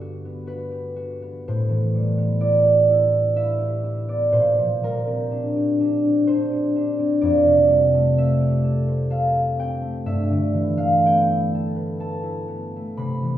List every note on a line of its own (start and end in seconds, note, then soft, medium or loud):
0.00 1.49 G2 medium
0.00 1.49 D3 medium
0.00 1.93 G3 medium
0.00 0.24 B3 medium
0.00 0.46 F#4 medium
0.00 0.70 G4 medium
0.00 2.86 A4 loud
0.00 0.46 B4 medium
0.25 1.21 B3 soft
0.47 0.95 F#4 medium
0.47 4.37 B4 medium
0.71 2.63 G4 soft
0.96 1.49 F#4 medium
1.22 2.17 B3 medium
1.48 4.40 A2 medium
1.48 4.31 C5 loud
1.69 4.39 E3 medium
1.95 4.82 G3 medium
2.18 3.11 B3 medium
2.41 2.88 E4 medium
2.41 4.05 D5 medium
2.65 3.58 G4 medium
2.90 3.35 E4 medium
3.12 4.07 B3 soft
3.36 3.82 E4 medium
3.36 4.38 E5 medium
3.59 5.55 G4 medium
3.84 4.37 E4 medium
4.08 4.38 B3 soft
4.08 4.51 D5 medium
4.32 7.22 A#2 medium
4.32 6.26 C5 medium
4.58 8.48 F3 medium
4.83 7.67 G3 medium
4.83 7.24 A#4 loud
5.07 6.04 C4 medium
5.31 5.79 D4 medium
5.56 6.51 G4 medium
5.80 6.27 D4 medium
6.05 6.98 C4 medium
6.27 6.75 D4 medium
6.27 8.87 C5 loud
6.52 8.40 G4 medium
6.76 7.25 D4 medium
6.99 8.16 C4 medium
7.21 10.10 F2 medium
7.21 8.82 D5 loud
7.46 10.11 C3 medium
7.69 11.59 G3 medium
7.94 9.80 A3 medium
8.17 9.58 C4 medium
8.17 9.78 E5 medium
8.41 9.34 G4 medium
8.64 9.09 A4 medium
8.88 10.10 C5 medium
9.10 11.53 A4 medium
9.10 10.10 F5 medium
9.35 13.25 G4 soft
9.59 10.10 C4 medium
9.59 11.05 G5 loud
9.82 10.76 A3 medium
10.06 12.99 G2 medium
10.06 13.38 E5 loud
10.31 12.99 D3 medium
10.54 12.99 E3 medium
10.77 12.75 A3 medium
10.77 11.19 F5 medium
11.05 12.47 B3 medium
11.05 13.38 G5 medium
11.26 12.21 E4 medium
11.54 11.99 A4 medium
11.75 13.38 B4 medium
12.00 13.00 A4 medium
12.00 13.00 A5 loud
12.23 13.38 E4 medium
12.48 13.38 B3 medium
12.76 13.02 A3 medium
12.97 13.38 C3 medium
12.97 13.38 B5 loud
13.22 13.38 E3 medium